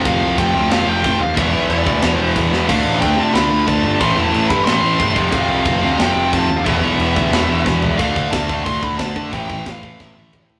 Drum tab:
CC |x-x-x-x-|x-x-x-x-|x-x-x-x-|x-x-x-x-|
HH |--------|--------|--------|--------|
SD |----o---|----o--o|----o---|----o---|
T1 |--------|--------|--------|--------|
T2 |--------|--------|--------|--------|
FT |--------|--------|--------|--------|
BD |o-o---o-|o--o--o-|o-o---o-|o--o--oo|

CC |x-x-x-x-|x-x-x---|--------|--------|
HH |--------|--------|o-o-o-o-|o-o-----|
SD |----o---|----o-o-|--o---o-|--o-o---|
T1 |--------|--------|--------|-----o--|
T2 |--------|--------|--------|------o-|
FT |--------|-------o|--------|-------o|
BD |o-o---o-|o--o--o-|oooooooo|ooooo-o-|